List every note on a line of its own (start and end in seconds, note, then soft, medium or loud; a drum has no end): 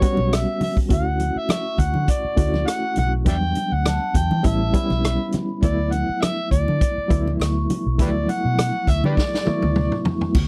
0.00 0.92 G3 medium
0.00 0.02 B3 medium
0.00 0.83 B3 medium
0.00 0.02 C#4 medium
0.00 0.83 C#4 medium
0.00 0.03 F#4 medium
0.00 0.84 F#4 medium
0.00 0.36 C#5 medium
0.00 kick medium
0.00 closed hi-hat medium
0.17 0.44 B1 medium
0.17 high conga medium
0.33 0.63 E5 medium
0.33 cross-stick medium
0.33 closed hi-hat medium
0.33 muted conga soft
0.61 0.76 E5 medium
0.61 open hi-hat medium
0.61 muted conga soft
0.61 high conga medium
0.61 low conga medium
0.77 kick medium
0.89 1.30 D2 loud
0.89 1.98 A3 medium
0.89 1.98 C#4 medium
0.89 1.99 E4 medium
0.89 1.99 F#4 medium
0.89 1.39 F#5 medium
0.89 kick loud
0.89 closed hi-hat medium
0.89 muted conga soft
0.89 low conga medium
1.20 closed hi-hat medium
1.20 muted conga soft
1.20 high conga soft
1.36 1.81 E5 medium
1.36 muted fingered electric bass stroke soft
1.49 3.52 C#6 soft
1.49 cross-stick loud
1.49 closed hi-hat medium
1.49 muted conga soft
1.49 high conga medium
1.78 1.93 D2 medium
1.78 2.11 F#5 medium
1.78 kick medium
1.78 closed hi-hat medium
1.78 low conga medium
1.94 2.07 D3 medium
1.94 high conga medium
2.08 2.69 D5 medium
2.08 3.53 F#5 soft
2.08 kick medium
2.08 closed hi-hat medium
2.25 muted fingered electric bass stroke soft
2.36 2.63 D2 medium
2.36 3.18 A3 medium
2.36 3.19 C#4 medium
2.36 3.19 E4 medium
2.36 3.19 F#4 medium
2.36 kick medium
2.36 closed hi-hat medium
2.54 cross-stick soft
2.54 high conga medium
2.67 2.97 F#5 medium
2.67 cross-stick medium
2.67 closed hi-hat medium
2.96 3.23 B1 medium
2.96 3.12 F#5 medium
2.96 closed hi-hat medium
2.96 muted conga soft
2.96 high conga medium
2.96 low conga medium
3.25 3.52 E2 medium
3.25 4.35 F#3 medium
3.25 4.34 G3 medium
3.25 4.34 B3 medium
3.25 4.34 D4 medium
3.25 3.36 D5 medium
3.25 3.36 E5 medium
3.25 3.75 G5 loud
3.25 kick loud
3.25 closed hi-hat medium
3.25 muted conga soft
3.25 low conga medium
3.55 closed hi-hat medium
3.55 muted conga soft
3.55 high conga soft
3.72 3.98 D2 medium
3.72 4.18 F#5 medium
3.86 4.70 A5 medium
3.86 cross-stick loud
3.86 closed hi-hat medium
3.86 muted conga soft
3.86 high conga medium
4.14 4.29 E2 medium
4.14 4.47 G5 medium
4.14 kick medium
4.14 closed hi-hat medium
4.14 muted conga soft
4.14 low conga medium
4.31 4.43 E3 medium
4.31 high conga medium
4.43 4.71 A1 medium
4.43 4.71 G3 medium
4.43 4.71 B3 medium
4.43 4.72 C#4 medium
4.43 4.72 E4 medium
4.43 5.34 E5 medium
4.43 kick medium
4.43 closed hi-hat medium
4.73 5.55 G3 medium
4.73 5.55 B3 medium
4.73 5.56 C#4 medium
4.73 5.56 E4 medium
4.73 5.88 B5 medium
4.73 kick medium
4.73 closed hi-hat medium
4.73 muted conga soft
4.90 5.16 B1 medium
4.90 cross-stick soft
4.90 high conga medium
5.04 cross-stick medium
5.04 closed hi-hat medium
5.32 cross-stick soft
5.32 closed hi-hat medium
5.32 muted conga soft
5.32 high conga medium
5.32 low conga medium
5.62 6.02 D2 medium
5.62 6.71 F#3 medium
5.62 6.71 A3 medium
5.62 6.71 B3 medium
5.62 6.72 E4 medium
5.62 5.94 D5 medium
5.62 kick loud
5.62 closed hi-hat medium
5.62 muted conga soft
5.62 low conga medium
5.92 6.23 F#5 loud
5.92 closed hi-hat medium
5.92 muted conga soft
5.92 high conga soft
6.09 muted fingered electric bass stroke soft
6.21 6.51 E5 medium
6.21 cross-stick loud
6.21 closed hi-hat medium
6.21 muted conga soft
6.21 high conga medium
6.51 6.66 D2 medium
6.51 7.36 D5 medium
6.51 kick medium
6.51 closed hi-hat medium
6.51 muted conga soft
6.51 low conga medium
6.68 6.80 D3 medium
6.68 high conga medium
6.81 kick medium
6.81 closed hi-hat medium
6.81 muted conga soft
6.98 muted fingered electric bass stroke soft
7.08 7.36 D2 medium
7.08 7.91 F#3 medium
7.08 7.91 A3 medium
7.08 7.91 B3 medium
7.08 7.92 E4 medium
7.08 kick medium
7.08 closed hi-hat medium
7.12 muted conga soft
7.27 high conga medium
7.40 7.66 D2 medium
7.40 9.45 C#6 medium
7.40 cross-stick medium
7.40 closed hi-hat medium
7.40 muted conga soft
7.70 closed hi-hat medium
7.70 muted conga soft
7.70 high conga medium
7.70 low conga medium
7.86 7.98 B1 medium
7.98 8.25 D2 medium
7.98 8.06 F3 medium
7.98 9.07 A3 medium
7.98 9.08 B3 medium
7.98 9.08 E4 medium
7.98 8.10 G4 medium
7.98 8.10 B4 medium
7.98 8.32 D5 medium
7.98 kick loud
7.98 closed hi-hat medium
7.98 muted conga soft
7.98 low conga medium
8.04 9.10 F#3 medium
8.29 8.91 F#5 loud
8.29 closed hi-hat medium
8.29 muted conga soft
8.29 high conga soft
8.45 8.70 B2 medium
8.59 cross-stick loud
8.59 closed hi-hat medium
8.59 high conga medium
8.87 9.02 D2 medium
8.87 9.05 E5 medium
8.87 kick medium
8.87 closed hi-hat medium
8.87 muted conga soft
8.87 low conga medium
9.04 9.16 D3 medium
9.04 9.13 G4 medium
9.04 9.14 B4 medium
9.04 10.02 D5 medium
9.04 high conga medium
9.17 kick medium
9.17 snare medium
9.17 muted conga soft
9.34 snare soft
9.45 10.27 F#3 medium
9.45 10.27 A3 medium
9.45 10.28 B3 medium
9.45 10.28 E4 medium
9.45 10.48 C#6 medium
9.45 muted fingered electric bass stroke soft
9.45 high tom medium
9.62 9.88 D2 medium
9.62 high tom medium
9.62 high conga medium
9.76 mid tom medium
9.92 mid tom medium
10.05 floor tom medium
10.05 high conga medium
10.05 low conga medium
10.21 floor tom medium
10.35 10.48 D2 loud
10.35 kick loud
10.35 crash medium
10.35 low conga medium